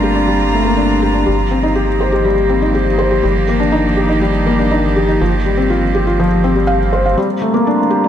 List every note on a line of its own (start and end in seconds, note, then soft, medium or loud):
0.00 1.25 G1 medium
0.00 1.27 G3 medium
0.00 0.53 A3 medium
0.00 0.65 A#3 medium
0.00 2.06 C4 medium
0.00 0.15 D4 medium
0.00 2.06 F4 medium
0.00 0.15 G4 medium
0.00 2.06 A#5 medium
0.15 0.28 D4 medium
0.27 0.35 G3 medium
0.53 0.65 A3 medium
0.65 0.77 A#3 medium
0.76 0.89 D4 medium
1.02 1.14 G4 medium
1.14 1.26 D4 medium
1.26 3.22 G1 medium
1.26 7.17 F3 medium
1.26 1.34 G3 medium
1.38 7.96 A#3 medium
1.51 7.18 D#3 medium
1.51 1.63 C4 medium
1.63 1.75 D#4 medium
1.75 1.88 G4 medium
1.88 7.96 G4 medium
2.01 2.13 C5 medium
2.12 2.25 G4 medium
2.25 2.32 G3 medium
2.49 2.62 C4 medium
2.62 2.74 D#4 medium
2.75 2.87 G4 medium
2.99 3.11 C5 medium
3.11 3.23 G4 medium
3.23 5.18 G1 medium
3.23 3.31 G3 medium
3.48 3.60 A#3 medium
3.60 3.72 D4 medium
3.72 3.84 D#4 medium
3.97 4.09 G4 medium
4.09 4.21 D#4 medium
4.21 4.29 G3 medium
4.47 4.59 A#3 medium
4.59 4.71 D4 medium
4.71 4.83 D#4 medium
4.96 5.08 G4 medium
5.08 5.20 D#4 medium
5.21 7.15 G1 medium
5.21 5.28 F3 medium
5.45 5.57 G3 medium
5.57 5.69 C4 medium
5.70 5.82 F4 medium
5.95 6.06 G4 medium
6.07 6.19 F4 medium
6.20 6.26 F3 medium
6.44 6.56 C4 medium
6.56 6.63 G3 medium
6.67 6.80 F5 medium
6.93 7.05 C5 medium
7.06 7.17 F5 medium
7.16 8.08 G3 medium
7.16 7.25 G3 medium
7.16 8.08 C4 medium
7.34 8.08 F4 medium
7.34 8.08 A#5 medium
7.41 7.53 A3 medium
7.54 7.66 A#3 medium
7.67 7.79 D4 medium
7.90 8.03 G4 medium
8.04 8.08 D4 medium